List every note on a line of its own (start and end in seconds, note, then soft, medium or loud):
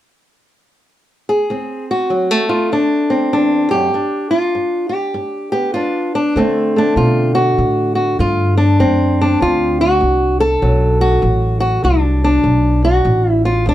1.29 1.85 G#4 medium
1.50 2.06 D2 medium
1.50 3.09 C4 soft
1.91 2.49 F#4 medium
2.10 2.67 D2 medium
2.10 2.31 F#3 soft
2.31 3.94 A3 soft
2.49 2.71 F4 medium
2.72 3.28 D2 medium
2.72 3.32 D4 medium
3.10 3.93 C4 medium
3.33 3.71 E2 medium
3.33 3.70 D4 medium
3.71 3.94 F#2 medium
3.71 4.30 G4 medium
3.94 4.50 G2 medium
3.94 5.74 D4 soft
4.31 4.89 F4 medium
4.55 5.11 G2 medium
4.89 5.51 G4 medium
5.14 5.71 G2 medium
5.52 6.34 B3 soft
5.52 5.73 G4 medium
5.74 6.32 G2 medium
5.74 6.14 D4 soft
5.74 6.13 F4 medium
6.15 6.37 D4 medium
6.36 6.93 D2 medium
6.36 6.95 D3 medium
6.36 11.23 D3 soft
6.36 6.76 A3 medium
6.36 7.38 C4 medium
6.76 10.26 A3 soft
6.76 6.97 D4 medium
6.96 7.54 D2 medium
6.96 7.56 B2 medium
6.96 7.34 F4 medium
7.35 7.94 F#4 loud
7.58 8.15 D2 medium
7.58 8.17 A2 medium
7.95 8.19 F#4 medium
8.19 8.76 D2 medium
8.19 8.78 G2 medium
8.19 8.57 F4 loud
8.57 9.20 D4 medium
8.79 9.37 D2 medium
8.79 9.39 F#2 medium
8.79 9.81 C4 medium
9.21 9.41 D4 medium
9.41 9.97 D2 medium
9.41 10.00 D2 medium
9.41 9.80 F4 medium
9.81 10.40 F#4 loud
10.01 10.61 C2 medium
10.01 10.57 D2 medium
10.40 11.01 A4 loud
10.62 11.21 B1 medium
10.62 11.18 D2 medium
10.62 13.67 F#3 soft
11.01 11.59 F#4 loud
11.22 11.82 A1 medium
11.22 11.79 D2 medium
11.60 11.83 F#4 loud
11.84 12.43 C2 medium
11.84 12.40 D2 medium
11.84 12.22 D4 medium
12.24 12.84 D4 medium
12.44 13.03 B1 medium
12.44 13.01 D2 medium
12.85 13.31 F#4 loud
13.05 13.64 A1 medium
13.05 13.62 D2 medium
13.31 13.45 E4 loud
13.45 13.67 F4 medium
13.66 13.74 D2 medium
13.66 13.74 D4 medium